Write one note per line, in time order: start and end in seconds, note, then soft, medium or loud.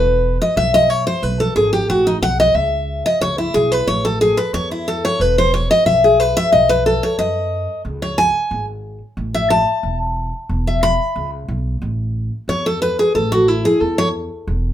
0.00 0.37 E1 medium
0.00 0.37 B4 medium
0.42 0.57 D#5 loud
0.56 1.03 B1 medium
0.56 0.74 E5 loud
0.74 0.90 D#5 loud
0.90 1.06 C#5 medium
1.07 1.23 C5 loud
1.22 1.46 B1 medium
1.22 1.40 B4 medium
1.40 1.55 A4 medium
1.56 1.84 G#1 medium
1.56 1.72 G#4 medium
1.73 1.88 G4 medium
1.89 2.17 A1 medium
1.89 2.06 F#4 medium
2.07 2.16 D#4 medium
2.22 2.50 B1 medium
2.22 2.39 F#5 loud
2.40 2.55 D#5 loud
2.55 3.01 C#2 medium
2.55 3.05 E5 loud
3.06 3.21 D#5 loud
3.21 3.49 C#2 medium
3.21 3.38 C#5 loud
3.38 3.54 E4 medium
3.54 3.82 B1 medium
3.54 3.72 G#4 medium
3.72 3.87 B4 medium
3.87 4.34 A1 medium
3.87 4.04 C#5 medium
4.05 4.20 A4 loud
4.21 4.38 G#4 medium
4.37 4.53 B4 medium
4.53 5.00 E2 medium
4.53 4.71 C#5 loud
4.71 4.87 E4 medium
4.88 5.04 A4 medium
5.05 5.21 C#5 loud
5.20 5.66 E1 medium
5.20 5.37 B4 medium
5.38 5.53 C5 medium
5.54 5.70 C#5 medium
5.71 5.86 D#5 loud
5.86 6.32 B1 medium
5.86 6.03 E5 loud
6.04 6.20 G#4 medium
6.20 6.36 B4 medium
6.37 6.52 E5 loud
6.52 6.99 B1 medium
6.52 6.69 D#5 medium
6.69 6.85 B4 medium
6.86 7.02 A4 medium
7.03 7.18 C#5 medium
7.18 7.65 F#2 medium
7.18 7.81 D#5 medium
7.85 8.31 C#2 medium
8.02 8.18 C#5 medium
8.18 8.65 G#5 loud
8.51 8.97 G#1 medium
9.17 9.64 A1 medium
9.34 9.50 E5 medium
9.50 9.97 A5 loud
9.83 10.30 E1 medium
10.49 10.96 E1 medium
10.67 10.83 E5 medium
10.83 11.30 B5 loud
11.16 11.44 C#2 medium
11.48 11.77 B1 loud
11.82 12.28 A1 medium
12.48 12.95 E2 medium
12.48 12.66 C#5 medium
12.66 12.81 A4 medium
12.82 12.99 B4 medium
12.99 13.15 G#4 medium
13.15 13.61 A1 medium
13.15 13.32 A4 medium
13.32 13.48 F#4 medium
13.48 13.65 E4 medium
13.65 13.81 G#4 medium
13.81 14.28 E2 medium
13.81 13.98 A4 medium
13.98 14.08 C#5 loud
14.47 14.73 E1 medium